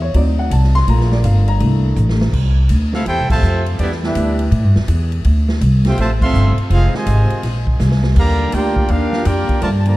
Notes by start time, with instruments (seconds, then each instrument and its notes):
Already playing: upright bass E2
0.02 grand piano C#5
0.14 upright bass D2, grand piano F#3 C4 D#4 D5, ride
0.39 grand piano F#5
0.51 upright bass C2, grand piano A5, hi-hat pedal, ride
0.64 snare
0.75 grand piano C6, snare, ride
0.87 upright bass A#1, grand piano A3 A#3 F4 A#5, ride
1.00 snare
1.12 grand piano D5, snare
1.24 upright bass G1, grand piano F5, hi-hat pedal, ride
1.48 grand piano A#5, ride
1.60 upright bass C2, grand piano A3 A#3 D4 E4, ride
1.96 upright bass A1, hi-hat pedal
2.09 snare
2.21 snare
2.33 upright bass C2, kick, crash
2.69 upright bass D2, hi-hat pedal, ride
2.93 trombone section A3 C4 F4, trumpet section C4 E4 A4 F5, snare
3.06 upright bass E2, trumpet section E4 A4 C5 G5, trombone section G4, ride
3.18 upright bass C2
3.30 upright bass A1, trombone section C3 F3 A3, trumpet section F4 C5 E5 A5, kick, crash
3.42 upright bass F2, hi-hat pedal
3.66 ride
3.79 upright bass E2, trombone section G3 B3 D4, trumpet section B3 E4 G4 D5, ride
3.92 snare
4.03 trombone section G3 B3 E4, trumpet section D4 G4 B4 E5, snare
4.15 upright bass D2, hi-hat pedal, ride
4.39 ride
4.51 upright bass A2, ride
4.64 upright bass G2
4.76 upright bass E2, snare
4.88 upright bass E2, hi-hat pedal, ride
5.12 ride
5.24 upright bass D2, ride
5.49 snare
5.61 upright bass C2, hi-hat pedal, ride
5.85 trombone section A3 C4 G4, trumpet section F4 C5 E5 G5, snare, ride
5.97 upright bass A1, trombone section C3 F3 A3, trumpet section F4 C5 E5 A5, ride
6.21 trombone section F3 A3 C4, trumpet section A4 E5 F5 C6, kick, crash
6.34 upright bass G1, hi-hat pedal
6.57 muted upright bass stroke, ride
6.70 upright bass F1, trombone section G#3 C4 F4, trumpet section D#4 G#4 C5 F5, ride
6.94 trombone section C3 D#3 G#3, trumpet section F4 C5 D#5 G#5, snare
7.06 upright bass G#1, hi-hat pedal, ride
7.30 ride
7.43 upright bass A#1, snare, ride
7.67 kick
7.79 upright bass C2, snare, hi-hat pedal
7.91 snare
8.04 snare
8.16 upright bass D#2, trombone section D3 G3 A#3, trumpet section G4 D5 F5 A#5, kick, crash
8.52 upright bass D2, trombone section A#3 D4 G4, trumpet section F4 A#4 D5 G5, hi-hat pedal, ride
8.76 kick
8.88 upright bass D#2, trombone section A#3 D4 F4, trumpet section D4 G4 A#4 F5, ride
9.13 snare
9.25 upright bass F2, trombone section A#3 D4 G4, trumpet section F4 A#4 D5 G5, hi-hat pedal, ride
9.49 muted upright bass stroke, kick, ride
9.62 upright bass G2, trombone section D3 F3 A3, trumpet section F4 A#4 D5 A5, ride
9.78 trumpet section A5
9.85 trombone section D3 F3 A#3, trumpet section F4 D5 A5 A#5, ride